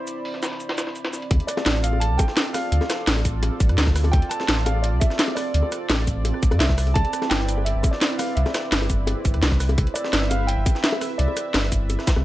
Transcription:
Already playing: analog synth pad C4 E4 D5 B5, grand piano C5
0.07 closed hi-hat, shaker
0.25 open hi-hat
0.34 snare
0.42 snare, open hi-hat, shaker
0.52 snare
0.60 closed hi-hat, shaker
0.69 snare, open hi-hat
0.78 snare, closed hi-hat, shaker
0.87 snare
0.95 closed hi-hat, shaker
1.05 snare, closed hi-hat
1.13 snare, shaker
1.22 closed hi-hat
1.31 sub bass D2, analog synth pad C4 F4 A4 D5, kick, closed hi-hat, high bongo
1.40 closed hi-hat
1.47 grand piano D5, cross-stick, closed hi-hat, shaker
1.57 snare, high bongo
1.66 sub bass A1, snare, closed hi-hat
1.75 snare
1.83 grand piano F5, closed hi-hat, shaker
1.93 high bongo
2.00 grand piano A5, closed hi-hat
2.10 sub bass C2
2.18 grand piano G5, kick, closed hi-hat, high bongo, shaker
2.28 snare
2.37 snare, closed hi-hat, shaker
2.53 grand piano F5, cross-stick, closed hi-hat, open hi-hat, high bongo, shaker
2.72 sub bass D2, closed hi-hat
2.81 snare, high bongo
2.90 cross-stick, snare, closed hi-hat, shaker
3.07 sub bass A1, snare, closed hi-hat, open hi-hat
3.16 snare, high bongo
3.25 kick, closed hi-hat, shaker
3.43 closed hi-hat, high bongo
3.60 sub bass A1, kick, closed hi-hat, shaker
3.69 sub bass G2, cross-stick, closed hi-hat
3.78 sub bass D2, snare, closed hi-hat, high bongo, shaker
3.87 kick, snare
3.96 cross-stick, closed hi-hat, open hi-hat, shaker
4.04 closed hi-hat, high bongo
4.12 sub bass D2, grand piano G5, kick, closed hi-hat
4.22 closed hi-hat
4.29 grand piano A5, cross-stick, closed hi-hat, shaker
4.40 snare, high bongo
4.48 sub bass A1, snare, closed hi-hat
4.58 snare
4.65 grand piano F5, closed hi-hat, high bongo, shaker
4.82 grand piano D5, closed hi-hat
4.93 sub bass C2
5.00 grand piano E5, kick, closed hi-hat, high bongo, shaker
5.10 snare
5.19 snare, closed hi-hat, shaker
5.28 high bongo
5.35 grand piano D5, cross-stick, closed hi-hat, open hi-hat, shaker
5.54 sub bass D2, closed hi-hat
5.63 high bongo
5.72 cross-stick, closed hi-hat, shaker
5.90 sub bass A1, snare, closed hi-hat, open hi-hat, high bongo
5.99 snare
6.07 kick, closed hi-hat, shaker
6.25 closed hi-hat, high bongo
6.34 cross-stick
6.43 sub bass A1, kick, closed hi-hat, shaker
6.51 sub bass G2, cross-stick, closed hi-hat, high bongo
6.59 sub bass C2, grand piano E5, snare, closed hi-hat, shaker
6.69 kick, snare
6.78 analog synth pad E4 B4, cross-stick, closed hi-hat, open hi-hat, shaker
6.87 closed hi-hat, high bongo
6.94 sub bass C2, grand piano A5, kick, closed hi-hat, high bongo
7.05 closed hi-hat
7.13 cross-stick, closed hi-hat, shaker
7.22 snare, high bongo
7.29 sub bass G1, grand piano G5, snare, closed hi-hat
7.40 snare
7.49 closed hi-hat, shaker
7.58 high bongo
7.65 grand piano E5, closed hi-hat
7.75 sub bass G1
7.83 kick, closed hi-hat, high bongo, shaker
7.91 grand piano D5, snare
8.01 snare, closed hi-hat, shaker
8.18 grand piano F5, cross-stick, closed hi-hat, open hi-hat, high bongo, shaker
8.35 sub bass C2, grand piano E5, closed hi-hat
8.46 snare, high bongo
8.54 cross-stick, snare, closed hi-hat, shaker
8.72 sub bass G1, snare, closed hi-hat, open hi-hat
8.81 snare, high bongo
8.90 kick, closed hi-hat, shaker
9.07 closed hi-hat, high bongo
9.25 sub bass G1, kick, closed hi-hat, shaker
9.34 sub bass E2, cross-stick, closed hi-hat
9.43 sub bass C2, snare, closed hi-hat, high bongo, shaker
9.52 kick, snare
9.60 analog synth pad E5, cross-stick, closed hi-hat, open hi-hat, shaker
9.69 closed hi-hat, high bongo
9.78 sub bass C2, kick, closed hi-hat
9.87 closed hi-hat
9.94 grand piano D5, cross-stick, closed hi-hat, shaker
10.04 snare, high bongo
10.13 sub bass G1, snare, closed hi-hat
10.22 snare
10.30 grand piano F5, closed hi-hat, high bongo, shaker
10.47 grand piano G5, closed hi-hat
10.58 sub bass G1
10.66 kick, closed hi-hat, high bongo, shaker
10.75 snare
10.83 grand piano E5, snare, closed hi-hat, shaker
10.92 high bongo
11.01 cross-stick, closed hi-hat, open hi-hat, shaker
11.18 sub bass C2, grand piano D5, closed hi-hat
11.28 high bongo
11.37 cross-stick, closed hi-hat, shaker
11.54 sub bass G1, snare, closed hi-hat, open hi-hat, high bongo
11.63 snare
11.72 kick, closed hi-hat, shaker
11.90 closed hi-hat, high bongo, shaker
11.99 cross-stick, snare
12.07 kick, snare, closed hi-hat, shaker
12.16 sub bass C2, cross-stick, high bongo

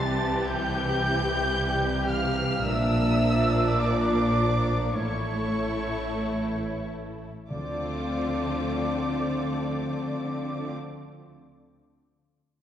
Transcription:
Already playing: double bass section C2, cello section C3, viola section E3 G4, french horn section G3 E4, violin section G4 A6, flute section A5
0.00 oboe A5
0.48 french horn section E3 G3, flute section G5, oboe G5, violin section G6
2.08 flute section F5, oboe F5, violin section F6
2.63 double bass section A#1, cello section A#2, viola section F3 D4, french horn section F3 D4, violin section A#4 D5 E6, flute section E5, oboe E5
3.77 french horn section F3 D4, flute section D5, oboe D5, violin section D6
4.94 double bass section A1, cello section A2, french horn section E3 E4, viola section A3 E4, violin section E4 A4 C#6, oboe C#5, flute section C#5
7.49 double bass section D2, cello section D3, timpani D3, viola section A3 C4, violin section F4 A4 D6, flute section D5, oboe D5
7.53 french horn section F3 C4

